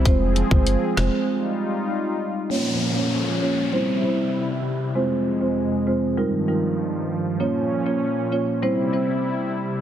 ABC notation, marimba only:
X:1
M:4/4
L:1/16
Q:1/4=98
K:Fm
V:1 name="Marimba"
[A,CFc] z2 [A,CFc] z2 [A,CFc] z8 z | [B,DFd] z2 [B,DFd]3 [B,DFd]2 [G,C=Ec]2 [G,CEc] z4 z | [A,CFc] z2 [A,CFc]3 [A,CFc]2 [G,EFB]2 [G,EFB] z4 z | [B,DFd] z2 [B,DFd]3 [B,DFd]2 [G,C=Ec]2 [G,CEc] z4 z |]